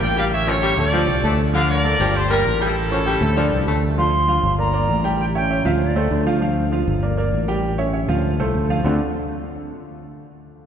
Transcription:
Already playing: grand piano A#3 A#4 A#5
0.01 fingered electric bass A1, trumpet section D5 G5
0.16 baritone saxophone G3, grand piano G4 G5 G6, trumpet section D5 F5
0.33 trumpet section C#5 E5
0.47 baritone saxophone F3, grand piano C#4 C#5 C#6, trumpet section A4 C#5
0.62 baritone saxophone G3, grand piano G4 G5 G6
0.77 fingered electric bass D2, grand piano A3 A4 A5, trumpet section A4 D5
0.93 grand piano F3 F4 F5, baritone saxophone F3
1.08 fingered electric bass C2
1.23 fingered electric bass D2, grand piano A3 A4 A5, baritone saxophone A3
1.53 baritone saxophone D3, grand piano F3 F4 F5, trumpet section D5 F5
1.70 trumpet section A#4 D5
1.84 grand piano A3 A4 A5
1.99 fingered electric bass G1, baritone saxophone F3, grand piano G3 G4 G5
2.15 trumpet section G4 C5
2.30 baritone saxophone G3, grand piano A#3 A#4 A#5, trumpet section G4 A#4
2.45 fingered electric bass A1
2.60 baritone saxophone G3, trumpet section E4 A4, grand piano G4 G5 G6
2.91 baritone saxophone F3, grand piano C#4 C#5 C#6
3.06 baritone saxophone G3, grand piano G4 G5 G6
3.21 fingered electric bass D2, grand piano A3 A4 A5
3.37 baritone saxophone F3, grand piano F3 D4 D5
3.52 fingered electric bass C2
3.67 fingered electric bass D2, baritone saxophone A3, grand piano A3 A4 A5
3.98 grand piano F3 F4 F5, flute C6
4.28 grand piano F3 F4 F5
4.43 fingered electric bass G1
4.58 grand piano A#3 A#4 D5, flute A#5
4.73 grand piano A#3 A#4 D5
4.89 fingered electric bass A1
5.04 grand piano G3 G4 G5
5.20 flute G5
5.35 grand piano C#4 C#5 E5, flute G5
5.50 grand piano C#4 C#5 E5
5.65 fingered electric bass D2, grand piano F3 F4 F5, flute E5
5.81 flute D5
5.96 grand piano A3 A4 C5
6.11 fingered electric bass D2
6.26 grand piano F3 F4 F5
6.42 grand piano F3 F4 F5
6.72 grand piano F3 F4 F5
6.88 fingered electric bass G1
7.02 grand piano A#3 A#4 D5
7.17 grand piano A#3 A#4 D5
7.33 fingered electric bass A1
7.48 grand piano G3 G4 G5
7.78 grand piano C#4 C#5 E5
7.93 grand piano C#4 C#5 E5
8.08 fingered electric bass D2, grand piano F3 F4 F5
8.39 fingered electric bass C2, grand piano A3 A4 C5
8.54 fingered electric bass D2
8.70 grand piano F3 F4 F5
8.84 fingered electric bass D2, grand piano D3 A3 C4 D4 F4 A4

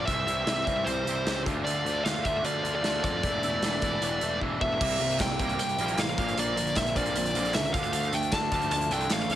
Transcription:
0.00 lead electric guitar D5
0.05 picked electric bass C2, overdriven electric guitar C3 E3 G3 C4 E4, lead electric guitar E5, kick, closed hi-hat
0.27 picked electric bass C2, overdriven electric guitar C3 E3 G3 C4 E4, closed hi-hat
0.46 picked electric bass C2, overdriven electric guitar C3 E3 G3 C4 E4, snare, closed hi-hat
0.65 picked electric bass C2, overdriven electric guitar C3 E3 G3 C4, lead electric guitar E5, kick, closed hi-hat
0.69 overdriven electric guitar E4
0.84 picked electric bass C2, overdriven electric guitar C3 E3 G3 C4 E4, lead electric guitar C5, closed hi-hat
1.05 picked electric bass C2, overdriven electric guitar C3 E3 G3 C4 E4, closed hi-hat
1.25 picked electric bass C#2, overdriven electric guitar C3 E3 G3 C4 E4, snare, closed hi-hat
1.46 picked electric bass D2, overdriven electric guitar D3 A3 D4 F4, kick, closed hi-hat
1.64 picked electric bass D2, overdriven electric guitar D3 A3 D4 F4, lead electric guitar D5, closed hi-hat
1.85 picked electric bass D2, overdriven electric guitar D3 A3 D4 F4, closed hi-hat
2.05 picked electric bass D2, overdriven electric guitar D3 A3 D4 F4, lead electric guitar F5, snare, closed hi-hat
2.24 picked electric bass D2, overdriven electric guitar D3 A3 D4 F4, lead electric guitar E5, kick, closed hi-hat
2.44 picked electric bass D2, overdriven electric guitar D3 A3 D4 F4, lead electric guitar D5, closed hi-hat
2.63 picked electric bass D2, overdriven electric guitar D3 A3 D4 F4, closed hi-hat
2.75 lead electric guitar D5
2.83 picked electric bass D2, overdriven electric guitar D3 A3 D4 F4, snare, closed hi-hat
3.03 picked electric bass F2, overdriven electric guitar D3 A3 D4 F4, lead electric guitar D5, kick, closed hi-hat
3.23 picked electric bass E1, overdriven electric guitar E3 A3 D4 E4, kick, closed hi-hat
3.43 picked electric bass E1, overdriven electric guitar E3 A3 D4 E4, closed hi-hat
3.62 picked electric bass E1, overdriven electric guitar E3 A3 D4 E4, snare, closed hi-hat
3.82 picked electric bass E1, overdriven electric guitar E3 A3 D4 E4, kick, closed hi-hat
4.01 picked electric bass E1, overdriven electric guitar E3 A3 D4 E4, closed hi-hat
4.21 picked electric bass E1, overdriven electric guitar E3 A3 D4 E4, closed hi-hat
4.41 picked electric bass E1, overdriven electric guitar E3 A3 D4 E4, kick
4.61 picked electric bass E1, overdriven electric guitar E3 A3 D4 E4, lead electric guitar E5, kick
4.79 picked electric bass C2, overdriven electric guitar C3 G3 A#3, analog synth pad A#3 E4 C5 G5, kick, crash
4.91 closed hi-hat
5.00 picked electric bass C2, overdriven electric guitar C3 G3, distorted electric guitar A#3, closed hi-hat
5.11 closed hi-hat
5.20 picked electric bass C2, overdriven electric guitar C3 G3, distorted electric guitar E4, lead electric guitar G5, kick, snare, clap, closed hi-hat
5.39 picked electric bass C2, overdriven electric guitar C3 G3 A#3, distorted electric guitar G4, kick, closed hi-hat
5.49 closed hi-hat
5.59 picked electric bass C2, overdriven electric guitar C3 G3, distorted electric guitar E4, lead electric guitar G5, closed hi-hat
5.69 closed hi-hat
5.78 picked electric bass A#1, overdriven electric guitar C3 G3 A#3, closed hi-hat
5.88 closed hi-hat
5.98 picked electric bass A1, overdriven electric guitar C3 G3, distorted electric guitar A#3, lead electric guitar F5, snare, clap, closed hi-hat
6.09 closed hi-hat
6.18 picked electric bass A#1, overdriven electric guitar A#2 D3 A#3, analog synth pad D4 F5, kick, closed hi-hat
6.28 closed hi-hat
6.37 picked electric bass A#1, overdriven electric guitar A#2 D3 A#3, lead electric guitar D5, closed hi-hat
6.56 picked electric bass A#1, overdriven electric guitar A#2 D3, distorted electric guitar A#3, closed hi-hat
6.67 closed hi-hat
6.76 picked electric bass A#1, overdriven electric guitar A#2 D3, distorted electric guitar C4, lead electric guitar E5, kick, snare, clap, closed hi-hat
6.86 closed hi-hat
6.95 overdriven electric guitar A#2 D3 A#3, distorted electric guitar F4, lead electric guitar D5, kick, closed hi-hat
7.06 closed hi-hat
7.15 picked electric bass A#1, overdriven electric guitar A#2 D3, distorted electric guitar C4, closed hi-hat
7.26 closed hi-hat
7.35 picked electric bass A#1, overdriven electric guitar A#2 D3 A#3, closed hi-hat
7.45 closed hi-hat
7.54 picked electric bass C#2, overdriven electric guitar A#2 D3, distorted electric guitar A#3, lead electric guitar E5, snare, clap, closed hi-hat
7.65 closed hi-hat
7.74 picked electric bass D2, overdriven electric guitar D3 A3 D4, analog synth pad F3 A4, lead electric guitar F5, kick, closed hi-hat
7.84 closed hi-hat
7.93 picked electric bass D2, overdriven electric guitar D3 A3 D4, closed hi-hat
8.03 closed hi-hat
8.13 picked electric bass D2, overdriven electric guitar D3 A3, lead electric guitar G5, closed hi-hat
8.23 closed hi-hat
8.32 picked electric bass D2, overdriven electric guitar D3 A3, distorted electric guitar D4, lead electric guitar A5, kick, snare, clap, closed hi-hat
8.42 snare
8.51 picked electric bass D2, overdriven electric guitar D3 A3 D4, distorted electric guitar F4, kick, closed hi-hat
8.62 closed hi-hat
8.71 picked electric bass D2, overdriven electric guitar D3 A3, distorted electric guitar D4, lead electric guitar A5, closed hi-hat
8.81 closed hi-hat
8.89 picked electric bass C2, overdriven electric guitar D3 A3 D4, lead electric guitar G5, closed hi-hat
9.01 closed hi-hat
9.09 picked electric bass A1, overdriven electric guitar D3 A3, lead electric guitar F5, snare, clap, closed hi-hat
9.20 closed hi-hat
9.30 picked electric bass E2, overdriven electric guitar D3 A3, distorted electric guitar D4, closed hi-hat

